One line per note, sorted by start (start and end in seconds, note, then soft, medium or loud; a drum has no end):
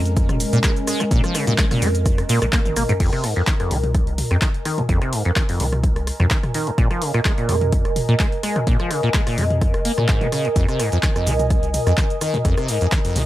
0.00 0.29 F2 medium
0.00 2.96 G#3 medium
0.00 2.96 C#4 medium
0.00 2.96 A#4 medium
0.00 13.26 A#4 medium
0.00 3.00 D#5 medium
0.00 3.00 G#5 medium
0.06 closed hi-hat medium
0.06 shaker soft
0.17 kick loud
0.17 closed hi-hat medium
0.17 shaker soft
0.29 0.44 F1 loud
0.29 cross-stick medium
0.29 closed hi-hat soft
0.29 mid tom medium
0.29 shaker soft
0.40 open hi-hat loud
0.40 shaker medium
0.53 0.59 A#2 loud
0.53 0.60 A#2 loud
0.53 closed hi-hat medium
0.53 shaker soft
0.63 0.71 G#3 medium
0.63 kick loud
0.63 cross-stick medium
0.63 clap loud
0.63 closed hi-hat medium
0.63 shaker soft
0.76 closed hi-hat soft
0.76 shaker soft
0.87 1.02 G#3 medium
0.87 cross-stick medium
0.87 open hi-hat loud
0.87 shaker medium
1.00 1.04 A#2 loud
1.00 cross-stick medium
1.00 closed hi-hat medium
1.00 shaker soft
1.11 1.19 A#1 loud
1.11 1.22 A#2 loud
1.11 kick loud
1.11 closed hi-hat medium
1.11 shaker soft
1.24 1.36 F3 medium
1.24 cross-stick medium
1.24 closed hi-hat soft
1.24 shaker soft
1.35 1.45 C#3 medium
1.35 cross-stick medium
1.35 open hi-hat loud
1.35 shaker medium
1.47 1.53 A#2 loud
1.47 closed hi-hat medium
1.47 mid tom medium
1.47 shaker soft
1.58 1.65 G#3 medium
1.58 kick loud
1.58 clap loud
1.58 closed hi-hat medium
1.58 shaker soft
1.71 1.83 A#2 medium
1.71 cross-stick medium
1.71 open hi-hat medium
1.71 mid tom medium
1.71 shaker soft
1.82 2.23 F2 medium
1.82 1.89 A#3 loud
1.82 open hi-hat loud
1.82 shaker medium
1.95 closed hi-hat medium
1.95 shaker soft
2.06 kick loud
2.06 cross-stick medium
2.06 closed hi-hat medium
2.06 shaker soft
2.18 cross-stick medium
2.18 closed hi-hat soft
2.18 shaker soft
2.29 2.40 A#2 loud
2.29 open hi-hat loud
2.29 shaker medium
2.42 2.49 A#1 medium
2.42 2.45 A#2 medium
2.42 cross-stick medium
2.42 closed hi-hat medium
2.42 shaker soft
2.53 2.60 A#3 medium
2.53 kick loud
2.53 clap loud
2.53 closed hi-hat medium
2.53 shaker soft
2.65 2.73 G#1 medium
2.65 closed hi-hat soft
2.65 high tom medium
2.65 shaker soft
2.76 2.85 G#1 medium
2.76 2.83 A#3 medium
2.76 cross-stick medium
2.76 open hi-hat loud
2.76 mid tom medium
2.76 shaker medium
2.89 2.93 G#2 loud
2.89 closed hi-hat medium
2.89 mid tom medium
2.89 shaker soft
3.00 3.08 F1 loud
3.00 3.10 F2 medium
3.00 kick loud
3.00 closed hi-hat medium
3.00 crash medium
3.13 3.25 C3 medium
3.13 cross-stick medium
3.13 closed hi-hat soft
3.24 3.34 G#2 medium
3.24 cross-stick medium
3.24 open hi-hat loud
3.31 13.26 D#5 medium
3.36 3.42 F2 loud
3.36 closed hi-hat soft
3.47 3.54 D#3 medium
3.47 kick loud
3.47 clap loud
3.47 closed hi-hat medium
3.60 3.73 F2 medium
3.60 cross-stick medium
3.60 closed hi-hat soft
3.71 4.07 C2 medium
3.71 3.78 F3 loud
3.71 open hi-hat loud
3.71 mid tom medium
3.84 closed hi-hat soft
3.84 mid tom medium
3.92 13.26 G#5 medium
3.92 kick loud
3.92 cross-stick medium
3.92 closed hi-hat medium
4.07 4.22 C2 loud
4.07 closed hi-hat soft
4.18 open hi-hat loud
4.18 mid tom medium
4.31 4.38 F2 loud
4.31 4.37 F2 loud
4.31 cross-stick medium
4.31 closed hi-hat soft
4.41 4.49 D#3 medium
4.41 kick loud
4.41 clap loud
4.41 closed hi-hat medium
4.54 closed hi-hat soft
4.65 4.80 D#3 medium
4.65 cross-stick medium
4.65 open hi-hat loud
4.78 4.82 F2 loud
4.78 closed hi-hat soft
4.78 mid tom medium
4.89 4.97 F1 medium
4.89 4.99 F2 loud
4.89 kick loud
4.89 closed hi-hat medium
5.02 5.14 C3 medium
5.02 cross-stick medium
5.02 closed hi-hat soft
5.13 5.23 G#2 medium
5.13 open hi-hat loud
5.25 5.31 F2 loud
5.25 closed hi-hat soft
5.36 5.43 D#3 medium
5.36 kick loud
5.36 cross-stick medium
5.36 clap loud
5.36 closed hi-hat medium
5.49 5.62 F2 medium
5.49 open hi-hat medium
5.60 5.96 C2 medium
5.60 5.67 F3 medium
5.60 open hi-hat loud
5.60 mid tom medium
5.73 cross-stick medium
5.73 closed hi-hat soft
5.73 mid tom medium
5.84 kick loud
5.84 closed hi-hat medium
5.96 6.11 C2 medium
5.96 cross-stick medium
5.96 closed hi-hat soft
6.07 cross-stick medium
6.07 open hi-hat loud
6.20 6.27 F2 loud
6.20 6.26 F2 loud
6.20 cross-stick medium
6.20 closed hi-hat soft
6.20 mid tom medium
6.30 6.38 D#3 medium
6.30 kick loud
6.30 clap loud
6.30 closed hi-hat medium
6.43 cross-stick medium
6.43 closed hi-hat soft
6.43 mid tom medium
6.54 6.69 D#3 medium
6.54 open hi-hat loud
6.67 6.71 F2 loud
6.67 closed hi-hat soft
6.78 6.86 A#1 loud
6.78 6.88 A#2 loud
6.78 kick loud
6.78 cross-stick medium
6.78 closed hi-hat medium
6.91 7.03 F3 medium
6.91 cross-stick medium
6.91 closed hi-hat soft
7.02 7.12 C#3 medium
7.02 open hi-hat loud
7.14 7.20 A#2 loud
7.14 cross-stick medium
7.14 closed hi-hat soft
7.25 7.32 G#3 medium
7.25 kick loud
7.25 clap loud
7.25 closed hi-hat medium
7.38 7.50 A#2 medium
7.38 closed hi-hat soft
7.49 7.84 F2 medium
7.49 7.56 A#3 loud
7.49 cross-stick medium
7.49 open hi-hat loud
7.49 mid tom medium
7.61 closed hi-hat soft
7.61 mid tom medium
7.72 kick loud
7.72 closed hi-hat medium
7.85 8.00 F1 loud
7.85 cross-stick medium
7.85 closed hi-hat soft
7.96 open hi-hat loud
7.96 mid tom medium
8.09 8.15 A#2 loud
8.09 8.16 A#2 loud
8.09 closed hi-hat soft
8.19 8.27 G#3 medium
8.19 kick loud
8.19 cross-stick medium
8.19 clap loud
8.19 closed hi-hat medium
8.32 closed hi-hat soft
8.43 8.58 G#3 medium
8.43 cross-stick medium
8.43 open hi-hat loud
8.56 8.60 A#2 loud
8.56 cross-stick medium
8.56 closed hi-hat soft
8.56 mid tom medium
8.67 8.75 A#1 loud
8.67 8.77 A#2 loud
8.67 kick loud
8.67 closed hi-hat medium
8.80 8.92 F3 medium
8.80 cross-stick medium
8.80 closed hi-hat soft
8.91 9.01 C#3 medium
8.91 cross-stick medium
8.91 open hi-hat loud
9.03 9.09 A#2 loud
9.03 closed hi-hat soft
9.14 9.21 G#3 medium
9.14 kick loud
9.14 clap loud
9.14 closed hi-hat medium
9.27 9.39 A#2 medium
9.27 cross-stick medium
9.27 open hi-hat medium
9.38 9.73 F2 medium
9.38 9.45 A#3 loud
9.38 open hi-hat loud
9.38 mid tom medium
9.50 closed hi-hat soft
9.50 mid tom medium
9.61 kick loud
9.61 cross-stick medium
9.61 closed hi-hat medium
9.74 9.89 F1 loud
9.74 cross-stick medium
9.74 closed hi-hat soft
9.85 9.92 A#3 medium
9.85 open hi-hat loud
9.98 10.05 A#2 loud
9.98 10.07 A#2 medium
9.98 cross-stick medium
9.98 closed hi-hat soft
9.98 mid tom medium
10.08 10.23 G#2 medium
10.08 kick loud
10.08 clap loud
10.08 closed hi-hat medium
10.21 10.27 C#4 medium
10.21 closed hi-hat soft
10.21 mid tom medium
10.32 10.46 C#3 medium
10.32 cross-stick medium
10.32 open hi-hat loud
10.45 10.49 G#2 medium
10.45 closed hi-hat soft
10.56 10.64 F1 loud
10.56 10.66 F2 loud
10.56 kick loud
10.56 closed hi-hat medium
10.56 shaker soft
10.69 10.81 C3 medium
10.69 cross-stick medium
10.69 closed hi-hat soft
10.69 shaker soft
10.80 10.90 G#2 medium
10.80 cross-stick medium
10.80 open hi-hat loud
10.80 shaker medium
10.92 10.98 F2 loud
10.92 closed hi-hat soft
10.92 shaker soft
11.03 11.10 D#3 medium
11.03 kick loud
11.03 clap loud
11.03 closed hi-hat medium
11.03 shaker soft
11.16 11.28 F2 medium
11.16 cross-stick medium
11.16 closed hi-hat soft
11.16 shaker soft
11.27 11.62 C2 medium
11.27 11.34 F3 loud
11.27 open hi-hat loud
11.27 mid tom medium
11.27 shaker medium
11.39 closed hi-hat soft
11.39 mid tom medium
11.39 shaker soft
11.50 kick loud
11.50 cross-stick medium
11.50 closed hi-hat medium
11.50 shaker soft
11.63 11.78 C2 loud
11.63 closed hi-hat soft
11.63 shaker soft
11.74 open hi-hat loud
11.74 mid tom medium
11.74 shaker medium
11.87 11.93 F2 loud
11.87 11.94 F2 loud
11.87 cross-stick medium
11.87 closed hi-hat soft
11.87 shaker soft
11.97 12.05 D#3 medium
11.97 kick loud
11.97 clap loud
11.97 closed hi-hat medium
11.97 shaker soft
12.10 closed hi-hat soft
12.10 shaker soft
12.21 12.35 D#3 medium
12.21 cross-stick medium
12.21 open hi-hat loud
12.21 shaker medium
12.34 12.37 F2 loud
12.34 closed hi-hat soft
12.34 mid tom medium
12.34 shaker soft
12.45 12.53 F1 loud
12.45 12.55 F2 loud
12.45 kick loud
12.45 closed hi-hat medium
12.45 shaker soft
12.57 12.70 C3 medium
12.57 cross-stick medium
12.57 closed hi-hat soft
12.57 shaker soft
12.68 12.79 G#2 medium
12.68 open hi-hat loud
12.68 shaker medium
12.81 12.87 F2 loud
12.81 closed hi-hat soft
12.81 shaker soft
12.92 12.99 D#3 medium
12.92 kick loud
12.92 cross-stick medium
12.92 clap loud
12.92 closed hi-hat medium
12.92 shaker soft
13.05 13.17 F2 medium
13.05 open hi-hat medium
13.05 shaker soft
13.16 13.26 C2 medium
13.16 13.23 F3 medium
13.16 open hi-hat loud
13.16 mid tom medium
13.16 shaker medium